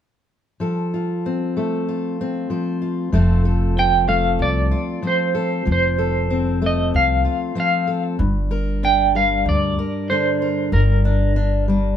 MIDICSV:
0, 0, Header, 1, 4, 480
1, 0, Start_track
1, 0, Tempo, 632244
1, 462, Time_signature, 4, 2, 24, 8
1, 9086, End_track
2, 0, Start_track
2, 0, Title_t, "Clean electric guitar"
2, 0, Program_c, 0, 27
2, 2878, Note_on_c, 0, 79, 72
2, 3099, Note_off_c, 0, 79, 0
2, 3102, Note_on_c, 0, 77, 71
2, 3352, Note_off_c, 0, 77, 0
2, 3357, Note_on_c, 0, 74, 75
2, 3802, Note_off_c, 0, 74, 0
2, 3851, Note_on_c, 0, 72, 69
2, 4334, Note_off_c, 0, 72, 0
2, 4344, Note_on_c, 0, 72, 68
2, 5015, Note_off_c, 0, 72, 0
2, 5059, Note_on_c, 0, 75, 65
2, 5280, Note_off_c, 0, 75, 0
2, 5283, Note_on_c, 0, 77, 73
2, 5725, Note_off_c, 0, 77, 0
2, 5769, Note_on_c, 0, 77, 69
2, 6094, Note_off_c, 0, 77, 0
2, 6716, Note_on_c, 0, 79, 78
2, 6954, Note_off_c, 0, 79, 0
2, 6957, Note_on_c, 0, 77, 72
2, 7199, Note_off_c, 0, 77, 0
2, 7203, Note_on_c, 0, 74, 76
2, 7666, Note_on_c, 0, 72, 68
2, 7689, Note_off_c, 0, 74, 0
2, 8145, Note_off_c, 0, 72, 0
2, 8148, Note_on_c, 0, 70, 59
2, 9086, Note_off_c, 0, 70, 0
2, 9086, End_track
3, 0, Start_track
3, 0, Title_t, "Steel-string acoustic guitar"
3, 0, Program_c, 1, 25
3, 455, Note_on_c, 1, 53, 46
3, 463, Note_on_c, 1, 69, 41
3, 712, Note_on_c, 1, 65, 38
3, 956, Note_on_c, 1, 60, 37
3, 1185, Note_off_c, 1, 69, 0
3, 1189, Note_on_c, 1, 57, 42
3, 1195, Note_on_c, 1, 69, 40
3, 1422, Note_off_c, 1, 65, 0
3, 1431, Note_on_c, 1, 65, 42
3, 1667, Note_off_c, 1, 60, 0
3, 1677, Note_on_c, 1, 60, 41
3, 1887, Note_off_c, 1, 53, 0
3, 1897, Note_on_c, 1, 53, 43
3, 1900, Note_off_c, 1, 69, 0
3, 1903, Note_on_c, 1, 72, 41
3, 2129, Note_off_c, 1, 65, 0
3, 2138, Note_on_c, 1, 65, 39
3, 2353, Note_off_c, 1, 53, 0
3, 2354, Note_off_c, 1, 65, 0
3, 2356, Note_off_c, 1, 72, 0
3, 2360, Note_off_c, 1, 57, 0
3, 2371, Note_on_c, 1, 53, 56
3, 2372, Note_off_c, 1, 60, 0
3, 2380, Note_on_c, 1, 57, 47
3, 2382, Note_on_c, 1, 60, 47
3, 2390, Note_on_c, 1, 65, 46
3, 2395, Note_on_c, 1, 69, 47
3, 2617, Note_off_c, 1, 69, 0
3, 2620, Note_on_c, 1, 69, 48
3, 2866, Note_off_c, 1, 60, 0
3, 2869, Note_on_c, 1, 60, 45
3, 3091, Note_off_c, 1, 57, 0
3, 3094, Note_on_c, 1, 57, 46
3, 3100, Note_off_c, 1, 69, 0
3, 3103, Note_on_c, 1, 69, 50
3, 3570, Note_off_c, 1, 65, 0
3, 3579, Note_on_c, 1, 65, 44
3, 3806, Note_off_c, 1, 53, 0
3, 3812, Note_off_c, 1, 60, 0
3, 3815, Note_on_c, 1, 53, 47
3, 3821, Note_on_c, 1, 60, 42
3, 4049, Note_off_c, 1, 69, 0
3, 4059, Note_on_c, 1, 69, 48
3, 4272, Note_off_c, 1, 53, 0
3, 4272, Note_off_c, 1, 57, 0
3, 4274, Note_off_c, 1, 69, 0
3, 4275, Note_off_c, 1, 65, 0
3, 4292, Note_on_c, 1, 53, 55
3, 4543, Note_on_c, 1, 69, 52
3, 4777, Note_off_c, 1, 60, 0
3, 4786, Note_on_c, 1, 60, 42
3, 5018, Note_off_c, 1, 69, 0
3, 5023, Note_on_c, 1, 57, 45
3, 5027, Note_on_c, 1, 69, 52
3, 5502, Note_on_c, 1, 65, 44
3, 5724, Note_off_c, 1, 53, 0
3, 5732, Note_off_c, 1, 60, 0
3, 5733, Note_on_c, 1, 53, 52
3, 5741, Note_on_c, 1, 60, 51
3, 5968, Note_off_c, 1, 69, 0
3, 5977, Note_on_c, 1, 69, 47
3, 6192, Note_off_c, 1, 53, 0
3, 6194, Note_off_c, 1, 69, 0
3, 6196, Note_off_c, 1, 57, 0
3, 6196, Note_off_c, 1, 65, 0
3, 6216, Note_on_c, 1, 43, 58
3, 6224, Note_off_c, 1, 60, 0
3, 6460, Note_on_c, 1, 70, 49
3, 6707, Note_on_c, 1, 62, 50
3, 6946, Note_on_c, 1, 55, 44
3, 6947, Note_off_c, 1, 70, 0
3, 6950, Note_on_c, 1, 70, 47
3, 7427, Note_off_c, 1, 70, 0
3, 7430, Note_on_c, 1, 70, 50
3, 7667, Note_off_c, 1, 62, 0
3, 7671, Note_on_c, 1, 50, 48
3, 7675, Note_on_c, 1, 62, 46
3, 7906, Note_off_c, 1, 70, 0
3, 7909, Note_on_c, 1, 70, 45
3, 8122, Note_off_c, 1, 62, 0
3, 8134, Note_off_c, 1, 43, 0
3, 8143, Note_on_c, 1, 43, 52
3, 8148, Note_off_c, 1, 50, 0
3, 8389, Note_on_c, 1, 62, 45
3, 8616, Note_off_c, 1, 62, 0
3, 8625, Note_on_c, 1, 62, 44
3, 8863, Note_off_c, 1, 55, 0
3, 8865, Note_off_c, 1, 62, 0
3, 8866, Note_on_c, 1, 55, 45
3, 8878, Note_on_c, 1, 62, 45
3, 9086, Note_off_c, 1, 43, 0
3, 9086, Note_off_c, 1, 55, 0
3, 9086, Note_off_c, 1, 62, 0
3, 9086, Note_off_c, 1, 70, 0
3, 9086, End_track
4, 0, Start_track
4, 0, Title_t, "Upright bass"
4, 0, Program_c, 2, 32
4, 2377, Note_on_c, 2, 29, 72
4, 3312, Note_off_c, 2, 29, 0
4, 3334, Note_on_c, 2, 36, 77
4, 3568, Note_off_c, 2, 36, 0
4, 4303, Note_on_c, 2, 29, 77
4, 5235, Note_off_c, 2, 29, 0
4, 5270, Note_on_c, 2, 36, 72
4, 5497, Note_off_c, 2, 36, 0
4, 6218, Note_on_c, 2, 31, 78
4, 7152, Note_off_c, 2, 31, 0
4, 7180, Note_on_c, 2, 38, 77
4, 7411, Note_off_c, 2, 38, 0
4, 8140, Note_on_c, 2, 31, 75
4, 9072, Note_off_c, 2, 31, 0
4, 9086, End_track
0, 0, End_of_file